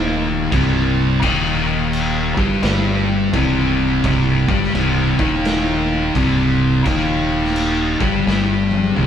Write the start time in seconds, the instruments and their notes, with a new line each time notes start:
Already playing: fingered electric bass D#1, distorted electric guitar D#2 D#3
0.51 fingered electric bass C1, distorted electric guitar C2 C3, kick, crash
1.22 fingered electric bass D#1, distorted electric guitar D#2 D#3, kick, crash
1.93 crash
2.37 fingered electric bass G1, distorted electric guitar G2 G3, kick
2.62 fingered electric bass G1, distorted electric guitar G2 G3, snare, crash
3.33 fingered electric bass C1, distorted electric guitar C2 C3, kick, crash
4.04 fingered electric bass C1, distorted electric guitar C2 C3, kick, crash
4.48 fingered electric bass G1, distorted electric guitar G2 G3, kick
4.63 snare
4.73 fingered electric bass C1, distorted electric guitar C2 C3, crash
5.18 fingered electric bass D#1, distorted electric guitar D#2 D#3, kick
5.45 snare, crash
6.15 fingered electric bass C1, distorted electric guitar C2 C3, kick, crash
6.85 fingered electric bass D#1, distorted electric guitar D#2 D#3, kick, crash
7.44 snare
7.56 crash
8.00 fingered electric bass G1, distorted electric guitar G2 G3, kick
8.26 fingered electric bass G1, distorted electric guitar G2 G3, snare
8.71 high tom
8.84 high tom
8.96 fingered electric bass C1, distorted electric guitar C2 C3, mid tom